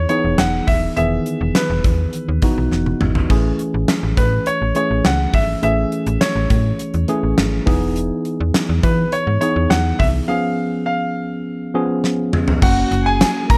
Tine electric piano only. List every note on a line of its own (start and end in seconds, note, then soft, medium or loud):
0.00 0.09 E3 medium
0.00 0.10 B3 medium
0.00 0.10 D#4 medium
0.00 0.11 G#4 loud
0.09 0.76 E3 medium
0.09 0.76 B3 medium
0.09 0.77 D#4 medium
0.09 0.77 G#4 medium
0.97 1.86 D#3 medium
0.97 1.86 E3 medium
0.97 1.86 B3 medium
0.97 1.86 G#4 medium
2.42 3.09 E3 medium
2.42 3.09 B3 medium
2.42 3.10 D#4 medium
2.42 3.10 F#4 medium
3.29 4.19 E3 medium
3.29 4.19 A3 medium
3.29 4.19 C#4 medium
3.29 4.19 G#4 medium
4.75 5.42 E3 medium
4.75 5.42 A3 medium
4.75 5.42 C#4 medium
4.75 5.43 G#4 medium
5.62 6.52 E3 medium
5.62 6.52 A3 medium
5.62 6.52 C#4 medium
5.62 6.52 G#4 medium
7.08 7.64 E3 medium
7.08 7.67 A3 medium
7.08 7.67 C#4 medium
7.08 7.66 G#4 loud
7.66 8.60 E3 medium
7.66 8.60 B3 medium
7.66 8.60 D#4 medium
7.66 8.60 G#4 medium
9.41 10.08 E3 medium
9.41 10.08 B3 medium
9.41 10.08 D#4 medium
9.41 10.09 G#4 medium
10.28 11.18 F3 medium
10.28 11.18 B3 medium
10.28 11.18 C#4 medium
10.28 11.18 G#4 medium
11.74 12.41 F3 medium
11.74 12.41 B3 medium
11.74 12.42 C#4 medium
11.74 12.42 G#4 medium
12.62 13.51 A#3 medium
12.62 13.51 C#4 medium
12.62 13.51 F#4 medium